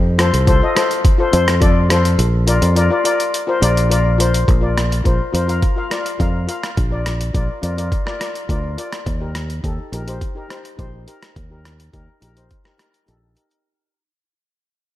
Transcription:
Already playing: F2
0.18 F4 A4 C5, cross-stick, closed hi-hat
0.33 C2, closed hi-hat
0.47 F4 A4 C5, kick, closed hi-hat
0.62 F4 A4 D#5
0.75 F4 A4 C5, cross-stick, closed hi-hat
0.91 closed hi-hat
1.05 kick, closed hi-hat
1.18 F4 A4 C5
1.32 F2 F4 A4 C5, closed hi-hat
1.48 cross-stick, closed hi-hat
1.60 F4 A4 D5, kick, closed hi-hat
1.89 F4 A4 C5, cross-stick, closed hi-hat
2.05 closed hi-hat
2.19 A#1, closed hi-hat
2.47 F4 A#4 D5, closed hi-hat
2.62 F2, closed hi-hat
2.75 F4 A#4 D5, closed hi-hat
2.90 F4 A#4 D5
3.04 F4 A#4 D5, closed hi-hat
3.20 closed hi-hat
3.34 closed hi-hat
3.47 F4 A#4 C5
3.61 A#1 F4 A#4 D5, closed hi-hat
3.77 closed hi-hat
3.90 F4 A#4 D5, closed hi-hat
4.18 F4 A#4 C5, closed hi-hat
4.34 closed hi-hat
4.48 A#1, kick, closed hi-hat
4.61 F4 A#4 D5
4.78 cross-stick, closed hi-hat
4.92 closed hi-hat
5.04 A#1 F4 A#4 C5, kick, closed hi-hat
5.33 F2 F4 A#4 C5, closed hi-hat
5.48 F4 A#4 F5, closed hi-hat
5.62 kick, closed hi-hat
5.76 F4 A#4 F5
5.90 F4 A#4 D5, cross-stick, closed hi-hat
6.06 closed hi-hat
6.19 F2 F4 A#4 F5, kick, closed hi-hat
6.47 F4 A#4 F5, closed hi-hat
6.63 cross-stick, closed hi-hat
6.77 A#1, kick, closed hi-hat
6.90 F4 A#4 D5
7.06 cross-stick, closed hi-hat
7.21 closed hi-hat
7.33 A#1 F4 A#4 D5, kick, closed hi-hat
7.62 F2 F4 A#4 D5, closed hi-hat
7.77 F4 A#4 D5, closed hi-hat
7.92 kick, closed hi-hat
8.06 F4 A#4 D5, cross-stick
8.20 F4 A#4 D5, cross-stick, closed hi-hat
8.35 closed hi-hat
8.49 D2 F4 A#4 D5, kick, closed hi-hat
8.77 F4 A#4 D5, closed hi-hat
8.93 cross-stick, closed hi-hat
9.06 D#2, kick, closed hi-hat
9.20 D#4 G4 A#4
9.35 cross-stick, closed hi-hat
9.50 closed hi-hat
9.63 D#2 D#4 G4 A4, kick, closed hi-hat
9.92 A#1 D#4 G4 A#4, closed hi-hat
10.07 D#4 G4 C5, closed hi-hat
10.21 kick, closed hi-hat
10.35 D#4 G4 A#4
10.48 D#4 G4 C5, cross-stick, closed hi-hat
10.65 closed hi-hat
10.77 A#1 D#4 G4 C5, kick, closed hi-hat
11.06 D#4 G4 A#4, closed hi-hat
11.23 cross-stick, closed hi-hat
11.36 D#2, kick, closed hi-hat
11.50 D#4 G4 A#4
11.65 cross-stick, closed hi-hat
11.80 closed hi-hat
11.92 D#2 D#4 G4 A#4, kick, closed hi-hat
12.21 A#1 D#4 G4 A#4, closed hi-hat
12.36 D#4 G4 C5, closed hi-hat
12.51 kick, closed hi-hat
12.64 D#4 G4 A#4, cross-stick
12.78 D#4 G4 A#4, cross-stick, closed hi-hat
12.94 closed hi-hat
13.06 A#1 D#4 G4 A4, closed hi-hat
13.35 D#4 G4 A#4, closed hi-hat
13.51 closed hi-hat

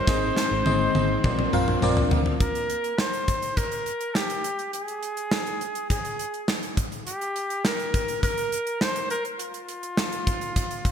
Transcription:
Already playing: D#4 C5
0.06 G#1 G#2 D#3 G#3 C4 D#4 G#4 D#5, kick, snare
0.11 G#3
0.36 C4 D#4 G#4 D#5, snare
0.51 G#1
0.65 G#1 C4 D#4 G#4 D#5, high tom
0.95 G#1 C4 D#4 G#4 D#5, high tom
1.23 A#1 A#2 F3 A#3 C4 D4 F4 A#4 D5, kick, mid tom
1.39 mid tom
1.53 A#1 C4 F4 A#4 F5, mid tom
1.68 mid tom
1.82 A#1 A#2 F3 A#3 C4 F4 A#4 D5, mid tom
1.97 floor tom
2.11 D2 C4 F4 A#4 F5, floor tom
2.26 floor tom
2.40 A#4, kick, closed hi-hat
2.55 closed hi-hat
2.70 closed hi-hat
2.84 closed hi-hat
2.98 C5, snare
3.13 closed hi-hat
3.28 kick, closed hi-hat
3.42 closed hi-hat
3.57 A#4, kick, closed hi-hat
3.72 closed hi-hat
3.86 closed hi-hat
4.01 closed hi-hat
4.15 G4, snare
4.30 closed hi-hat
4.44 closed hi-hat
4.59 closed hi-hat
4.73 G#4, closed hi-hat
4.88 closed hi-hat
5.03 closed hi-hat
5.17 closed hi-hat
5.31 snare
5.46 closed hi-hat
5.61 closed hi-hat
5.75 closed hi-hat
5.90 G#4, kick, closed hi-hat
6.05 closed hi-hat
6.19 closed hi-hat
6.34 closed hi-hat
6.48 snare
6.63 closed hi-hat
6.77 kick, closed hi-hat
6.92 closed hi-hat
7.07 G4, closed hi-hat
7.21 closed hi-hat
7.36 closed hi-hat
7.50 closed hi-hat
7.65 A#4, snare
7.80 closed hi-hat
7.94 kick, closed hi-hat
8.08 closed hi-hat
8.23 A#4, kick, closed hi-hat
8.37 closed hi-hat
8.52 closed hi-hat
8.67 closed hi-hat
8.81 C5, snare
8.96 closed hi-hat
9.10 A#4, closed hi-hat
9.25 closed hi-hat
9.39 F4, closed hi-hat
9.54 closed hi-hat
9.69 closed hi-hat
9.83 closed hi-hat
9.97 snare
10.12 closed hi-hat
10.27 kick, closed hi-hat
10.41 closed hi-hat
10.56 kick, closed hi-hat
10.71 closed hi-hat
10.85 kick, closed hi-hat

